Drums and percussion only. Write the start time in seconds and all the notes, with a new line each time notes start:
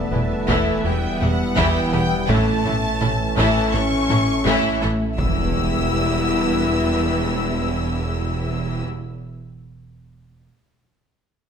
0.13 taiko mid
0.49 taiko
1.21 taiko mid
1.57 taiko
1.93 taiko rim
2.29 taiko
2.65 taiko mid
3.02 taiko mid
3.38 taiko
4.10 taiko mid
4.46 taiko
4.83 taiko rim
5.18 taiko